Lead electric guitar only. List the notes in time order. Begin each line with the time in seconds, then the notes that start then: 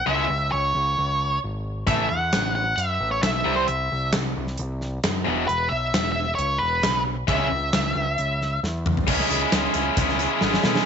0.07 E5
0.52 C#5
1.87 E5
2.09 F#5
2.55 F#5
2.76 E5
3.11 C#5
3.23 E5
3.56 C5
3.68 E5
5.48 B4
5.69 E5
6.12 E5
6.35 C#5
6.58 B4
7.29 E5